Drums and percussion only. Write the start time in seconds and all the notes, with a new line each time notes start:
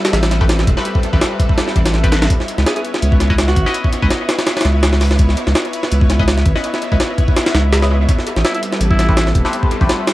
0.05 snare, closed hi-hat
0.13 snare, closed hi-hat
0.23 snare, closed hi-hat
0.31 snare, closed hi-hat
0.41 kick
0.49 snare, closed hi-hat
0.59 snare
0.67 kick, closed hi-hat
0.77 snare
0.85 closed hi-hat
0.95 kick
1.03 closed hi-hat
1.13 kick
1.21 snare, closed hi-hat
1.40 kick, closed hi-hat
1.49 kick
1.58 snare, closed hi-hat
1.68 snare
1.76 kick, closed hi-hat
1.86 snare, closed hi-hat
1.94 snare
2.04 kick, closed hi-hat
2.12 snare, closed hi-hat
2.22 snare, closed hi-hat
2.30 kick, closed hi-hat
2.40 snare
2.48 closed hi-hat
2.58 snare
2.66 snare, closed hi-hat
2.76 closed hi-hat
2.85 closed hi-hat
2.94 snare
3.02 closed hi-hat
3.12 kick
3.20 snare, closed hi-hat
3.30 kick
3.38 snare, closed hi-hat
3.48 snare
3.56 kick, closed hi-hat
3.66 snare
3.74 closed hi-hat
3.84 kick
3.93 closed hi-hat
4.02 kick
4.10 snare, closed hi-hat
4.29 snare, closed hi-hat
4.39 snare, closed hi-hat
4.47 snare, closed hi-hat
4.57 snare, closed hi-hat
4.61 snare, closed hi-hat
4.65 snare, closed hi-hat
4.83 snare, closed hi-hat
4.93 snare
5.01 snare, open hi-hat
5.11 snare
5.19 kick, closed hi-hat
5.29 snare
5.37 closed hi-hat
5.47 snare
5.55 snare, closed hi-hat
5.65 closed hi-hat
5.73 closed hi-hat
5.83 snare
5.92 closed hi-hat
6.01 kick
6.10 snare, closed hi-hat
6.20 kick
6.28 snare, closed hi-hat
6.38 snare
6.46 kick, closed hi-hat
6.56 snare
6.64 closed hi-hat
6.74 snare
6.82 closed hi-hat
6.92 kick
7.00 snare, closed hi-hat
7.18 kick, closed hi-hat
7.28 kick
7.36 snare, closed hi-hat
7.46 snare, closed hi-hat
7.55 snare, closed hi-hat
7.72 snare, closed hi-hat
7.82 snare
8.09 kick, closed hi-hat
8.19 snare
8.27 closed hi-hat
8.36 snare
8.45 snare, closed hi-hat
8.55 closed hi-hat
8.63 closed hi-hat
8.72 snare
8.81 closed hi-hat
8.91 kick
8.99 snare, closed hi-hat
9.09 kick
9.17 snare, closed hi-hat
9.27 snare
9.35 kick, closed hi-hat
9.45 snare
9.53 closed hi-hat
9.63 kick
9.71 closed hi-hat
9.81 kick
9.89 snare, closed hi-hat
10.07 snare, closed hi-hat